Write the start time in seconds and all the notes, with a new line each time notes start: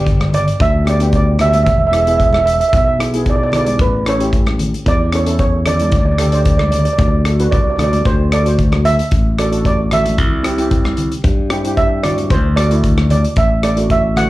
Already playing: G1 B3 D4 G4 D5
0.07 kick, closed hi-hat
0.20 cross-stick, high conga
0.33 D5, closed hi-hat, low conga
0.48 closed hi-hat
0.60 D2 E5, kick, closed hi-hat
0.85 B3 D4 G4, cross-stick, closed hi-hat
0.90 D5
1.00 B3 D4 G4, closed hi-hat
1.13 D5, kick, closed hi-hat
1.39 B3 D4 G4 E5, cross-stick, closed hi-hat, low conga
1.49 E5
1.53 E5, closed hi-hat, high conga
1.63 E1 E5, kick, closed hi-hat, low conga
1.69 E5
1.79 E5
1.87 E5
1.91 B3 E4 G#4 E5, cross-stick, closed hi-hat
2.00 E5
2.07 B3 E4 G#4 E5, closed hi-hat
2.17 E5, kick, closed hi-hat
2.24 E5
2.33 E5, cross-stick, high conga
2.39 E5
2.45 E5, closed hi-hat
2.53 E5
2.60 E5, closed hi-hat
2.68 E5
2.73 B1 E5, kick, closed hi-hat
2.85 E5
2.99 B3 E4 G#4, cross-stick, closed hi-hat
3.14 B3 E4 G#4, closed hi-hat
3.26 D5, kick, closed hi-hat
3.36 D5
3.43 D5
3.50 B3 E4 D5, cross-stick, closed hi-hat, low conga
3.54 G#4 D5
3.65 D5, closed hi-hat, high conga
3.79 A1 B4, kick, closed hi-hat, low conga
4.05 C#4 E4 A4 C#5, cross-stick, closed hi-hat
4.19 C#4 E4 G4, closed hi-hat
4.33 kick, closed hi-hat
4.46 cross-stick, high conga
4.59 closed hi-hat, low conga
4.74 closed hi-hat
4.86 E2 D5, kick, closed hi-hat
5.12 C#4 E4 A4 C#5, cross-stick, closed hi-hat
5.26 C#4 E4 A4, closed hi-hat
5.39 C#5, kick, closed hi-hat
5.65 C#4 E4 A4 D5, cross-stick, closed hi-hat, low conga
5.74 D5
5.80 D5, closed hi-hat, high conga
5.90 D2 D5, kick, closed hi-hat
5.97 D5
6.05 D5
6.12 D5
6.18 D4 G4 A4 D5, cross-stick, closed hi-hat, low conga
6.25 D5
6.32 D4 G4 C5 D5, closed hi-hat
6.41 D5
6.45 D5, kick, closed hi-hat
6.58 D5, cross-stick, high conga
6.64 D5
6.71 D5, closed hi-hat, low conga
6.79 D5
6.85 D5, closed hi-hat
6.93 D5
6.98 D2 D5, kick, closed hi-hat
7.08 D5
7.25 D4 F#4 A4, cross-stick, closed hi-hat
7.40 D4 F#4 B4, closed hi-hat
7.51 C2 D5, kick, closed hi-hat
7.61 D5
7.70 D5
7.76 D2 D4 F#4 A4 D5, cross-stick, closed hi-hat, low conga
7.84 D5
7.92 D5, closed hi-hat, high conga
8.05 D2 C5, kick, closed hi-hat, low conga
8.31 D4 F#4 A4 D5, cross-stick, closed hi-hat
8.46 D4 F#4 C5, closed hi-hat
8.59 kick, closed hi-hat
8.72 cross-stick, high conga
8.85 E5, closed hi-hat, low conga
8.99 closed hi-hat
9.11 A1, kick, closed hi-hat
9.38 D4 F#4 A4 D5, cross-stick, closed hi-hat
9.51 D4 F#4 A4, closed hi-hat
9.65 D5, kick, closed hi-hat
9.91 D4 F#4 A4 E5, cross-stick, closed hi-hat, low conga
10.06 closed hi-hat, high conga
10.18 C2, kick, closed hi-hat, low conga
10.43 C4 E4 G4, cross-stick, closed hi-hat
10.58 C4 E4 G4, closed hi-hat
10.71 kick, closed hi-hat
10.84 cross-stick, high conga
10.97 closed hi-hat, low conga
11.12 closed hi-hat
11.24 G2, kick, closed hi-hat
11.50 C4 E4 G4, cross-stick, closed hi-hat
11.64 C4 E4 G4, closed hi-hat
11.77 E5, kick, closed hi-hat
12.03 C4 E4 F#4 D5, cross-stick, closed hi-hat, low conga
12.18 closed hi-hat, high conga
12.30 D2 C5, kick, closed hi-hat, low conga
12.56 A3 D4 F#4 D5, cross-stick, closed hi-hat
12.70 A3 D4 E4, closed hi-hat
12.84 kick, closed hi-hat
12.98 cross-stick, high conga
13.10 D5, closed hi-hat, low conga
13.24 closed hi-hat
13.36 A1 E5, kick, closed hi-hat
13.63 A3 D4 A4 D5, cross-stick, closed hi-hat
13.76 A3 D4 F#4, closed hi-hat
13.90 E5, kick, closed hi-hat
14.16 A3 D4 F#4 F#5, cross-stick, closed hi-hat, low conga